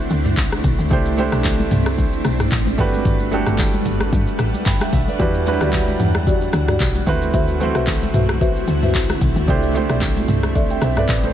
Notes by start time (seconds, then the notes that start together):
Already playing: D3 A3 C4 D4 E4 F#4 B4 C5 F#5
0.10 D2, shaker
0.25 mid tom, high conga, shaker
0.37 C2, kick, clap, shaker
0.52 cross-stick, high conga, shaker
0.64 B1, kick, open hi-hat, low conga, shaker
0.79 D2, high conga, shaker
0.90 C2 G3 A3 C4 D4 E4 G4 C5, kick, low conga, shaker
1.05 shaker
1.17 A3 D4 E4 G4 C5, high conga, shaker
1.32 B1, cross-stick, shaker
1.44 kick, clap, low conga, shaker
1.59 high conga, shaker
1.71 C2, mid tom, shaker
1.86 cross-stick, high conga, shaker
1.98 kick, low conga, shaker
2.13 shaker
2.25 B1, cross-stick, shaker
2.40 cross-stick, mid tom, high conga, shaker
2.52 A1, kick, clap, shaker
2.66 high conga, shaker
2.78 G1 A3 D4 F#4 G4 A4 B4 F#5, kick, open hi-hat, low conga, shaker
2.93 high conga, shaker
3.05 G1, kick, low conga, shaker
3.20 shaker
3.31 A3 D4 F#4 G4 A4, high conga, shaker
3.46 G1, cross-stick, shaker
3.58 kick, clap, low conga, shaker
3.73 high conga, shaker
3.85 G1, mid tom, shaker
4.00 cross-stick, high conga, shaker
4.12 G2, kick, low conga, shaker
4.27 shaker
4.39 A1, cross-stick, shaker
4.54 high conga, shaker
4.66 G1 G5 B5, kick, clap, shaker
4.80 E5 G5, cross-stick, high conga, shaker
4.93 B1 E5, kick, open hi-hat, low conga, shaker
5.08 B4 D5, high conga, shaker
5.19 E2 E3 G3 D4 E4 F#4 G4 B4 D5, kick, low conga, shaker
5.34 shaker
5.46 F#3 D4 E4 F#4 B4, high conga, shaker
5.52 G3
5.61 D2 F#4 G4 D5, cross-stick, shaker
5.73 kick, clap, low conga, shaker
5.88 high conga, shaker
6.00 E2, mid tom, shaker
6.14 cross-stick, high conga, shaker
6.27 F#4 G4 D5, kick, low conga, shaker
6.41 shaker
6.53 D2, cross-stick, shaker
6.68 F#4 G4 D5, cross-stick, mid tom, high conga, shaker
6.80 B1, kick, clap, shaker
6.95 high conga, shaker
7.06 D2 D3 A3 C4 E4 F#4 B4, kick, open hi-hat, low conga, shaker
7.22 high conga, shaker
7.34 D2 F#4 B4 C5 E5, kick, low conga, shaker
7.48 shaker
7.60 A3 C4 E4 F#4 C5, high conga, shaker
7.75 B1 F#4 B4 C5 E5, cross-stick, shaker
7.87 kick, clap, low conga, shaker
8.02 high conga, shaker
8.14 B1 F#4 B4 C5 E5, mid tom, shaker
8.29 cross-stick, high conga, shaker
8.41 F#4 B4 C5 E5, kick, low conga, shaker
8.56 shaker
8.67 D2, shaker
8.82 F#4 B4 C5 E5, mid tom, high conga, shaker
8.95 C2, kick, clap, shaker
9.09 cross-stick, high conga, shaker
9.21 B1, kick, open hi-hat, low conga, shaker
9.36 D2, high conga, shaker
9.47 C2 G3 A3 C4 D4 E4 G4 A4 C5 D5 E5, kick, low conga, shaker
9.63 shaker
9.74 A3 D4 E4 G4 C5, high conga, shaker
9.89 B1 A4 D5 E5, cross-stick, shaker
10.01 kick, clap, low conga, shaker
10.16 high conga, shaker
10.28 C2, mid tom, shaker
10.43 cross-stick, high conga, shaker
10.55 A4 D5 E5, kick, low conga, shaker
10.70 E5 G5, shaker
10.82 B1 C5 E5, cross-stick, shaker
10.97 A4 B4 D5 E5, cross-stick, mid tom, high conga, shaker
11.09 A1, kick, clap, shaker
11.23 A4 C5, high conga, shaker